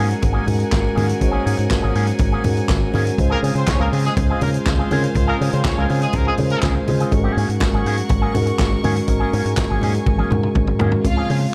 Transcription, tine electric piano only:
0.00 0.46 G#3 medium
0.00 0.47 C#4 medium
0.00 0.48 F#4 medium
0.00 0.48 A#4 loud
0.46 0.87 G#3 medium
0.46 0.88 C#4 medium
0.46 0.88 F#4 medium
0.46 0.88 A#4 medium
0.96 1.17 G#3 medium
0.96 1.17 C#4 medium
0.96 1.17 F#4 medium
0.96 1.17 A#4 medium
1.21 2.02 G#3 medium
1.21 2.02 C#4 medium
1.21 2.02 F#4 medium
1.21 1.28 C5 medium
1.28 2.05 C#5 loud
2.44 2.85 G#3 medium
2.44 2.85 C#4 medium
2.44 2.85 F#4 medium
2.44 2.85 A#4 medium
2.93 3.14 G#3 medium
2.93 3.14 C#4 medium
2.93 3.14 F#4 medium
2.93 3.15 A#4 loud
3.18 3.99 G#3 medium
3.18 3.99 C#4 medium
3.18 3.99 F4 medium
3.18 4.00 C5 medium
4.41 4.82 G#3 medium
4.41 4.82 C#4 medium
4.41 4.82 F4 medium
4.41 4.82 G#4 medium
4.91 5.11 G#3 medium
4.91 5.11 C#4 medium
4.91 5.12 F4 medium
4.91 5.12 A#4 medium
5.16 5.96 G#3 medium
5.16 5.96 C#4 medium
5.16 5.96 F4 medium
5.16 5.97 C5 medium
6.38 6.78 G#3 medium
6.38 6.79 C#4 medium
6.38 6.79 F4 medium
6.38 6.45 A#4 medium
6.45 6.82 C5 medium
6.87 7.07 G#3 medium
6.87 7.07 C#4 medium
6.87 7.08 F4 medium
6.87 7.08 C5 medium
7.12 7.92 G#3 medium
7.12 7.93 C#4 medium
7.12 7.93 F#4 medium
7.12 7.18 A4 medium
7.19 7.96 A#4 medium
8.34 8.75 G#3 medium
8.34 8.75 C#4 medium
8.34 8.75 F#4 medium
8.34 8.41 G#4 medium
8.42 8.78 A#4 medium
8.83 9.04 G#3 medium
8.83 9.04 C#4 medium
8.83 9.04 F#4 medium
8.83 9.04 A#4 medium
9.07 9.88 G#3 medium
9.07 9.88 C#4 medium
9.07 9.89 F#4 medium
9.07 9.89 A#4 medium
10.31 10.71 G#3 medium
10.31 10.71 C#4 medium
10.31 10.72 F#4 medium
10.31 10.72 A#4 medium
10.79 11.00 G#3 medium
10.79 11.00 C#4 medium
10.79 11.01 F#4 medium
10.79 11.01 A#4 medium
11.04 11.54 C#3 medium
11.04 11.54 G#3 soft
11.04 11.54 C4 medium

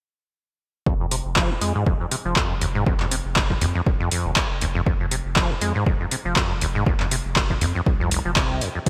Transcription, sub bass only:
0.86 1.21 F1 loud
1.25 1.58 F1 medium
1.61 1.73 F2 medium
1.86 1.98 D#1 medium
2.25 2.34 F1 medium
2.50 2.83 F1 medium
2.86 3.21 F1 medium
3.25 3.58 F1 medium
3.61 3.73 F2 medium
3.86 3.98 D#1 medium
4.25 4.34 F1 medium
4.50 4.83 F1 medium
4.86 5.21 F1 loud
5.25 5.58 F1 medium
5.61 5.73 F2 medium
5.86 5.98 D#1 medium
6.25 6.34 F1 medium
6.50 6.83 F1 medium
6.86 7.21 F1 medium
7.25 7.58 F1 medium
7.61 7.73 F2 medium
7.86 8.21 C2 medium
8.25 8.45 F1 medium
8.50 8.59 C2 medium

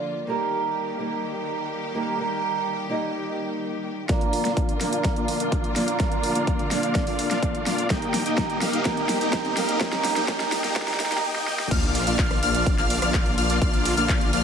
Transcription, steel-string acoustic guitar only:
0.00 0.25 A#3 medium
0.00 0.25 D4 medium
0.00 0.26 F4 medium
0.00 0.26 D5 loud
0.27 0.96 A#3 medium
0.27 0.97 D#4 medium
0.27 0.97 G4 medium
0.27 0.98 A#4 loud
0.99 1.92 A#3 medium
0.99 1.92 D#4 medium
0.99 1.92 G4 medium
0.99 1.93 A#4 medium
1.94 2.16 A#3 medium
1.94 2.16 D#4 medium
1.94 2.16 G4 medium
1.94 2.16 A#4 loud
2.18 2.87 A#3 medium
2.18 2.87 D#4 medium
2.18 2.88 G4 medium
2.18 2.88 A#4 medium
2.89 4.06 A#3 medium
2.89 4.06 D#4 medium
2.89 4.07 G4 medium
2.89 4.07 D#5 loud
4.08 4.77 A#3 medium
4.08 4.78 D4 medium
4.08 4.78 F4 medium
4.08 4.79 A#4 loud
4.80 5.73 A#3 medium
4.80 5.73 D4 medium
4.80 5.73 F4 medium
4.80 5.74 A#4 medium
5.75 5.97 A#3 medium
5.75 5.97 D4 medium
5.75 5.97 F4 medium
5.75 5.97 A#4 loud
5.99 6.68 A#3 medium
5.99 6.68 D4 medium
5.99 6.69 A#4 medium
6.70 7.87 A#3 medium
6.70 7.87 D4 medium
6.70 7.88 F4 medium
6.70 7.88 D5 loud
7.89 8.58 A#3 medium
7.89 8.59 D#4 medium
7.89 8.59 G4 medium
7.89 8.59 A#4 loud
8.60 8.83 A#3 medium
8.60 8.83 D#4 medium
8.60 8.84 G4 medium
8.60 8.84 A#4 medium
8.84 9.53 A#3 loud
8.84 9.54 D#4 medium
8.84 9.54 G4 medium
8.84 9.55 A#4 loud
9.56 9.78 A#3 medium
9.56 9.79 D#4 medium
9.56 9.79 G4 medium
9.56 9.79 A#4 medium
9.79 10.26 A#3 loud
9.79 10.26 D#4 medium
9.79 10.27 G4 medium
9.79 10.27 A#4 loud
10.27 10.73 A#3 medium
10.27 10.74 D#4 medium
10.27 10.74 G4 medium
10.27 10.75 A#4 loud
10.75 10.97 A#3 loud
10.75 10.98 D#4 medium
10.75 10.98 G4 medium
10.75 10.98 A#4 loud
10.98 11.21 A#3 loud
10.98 11.21 D#4 loud
10.98 11.22 G4 loud
10.98 11.22 A#4 loud

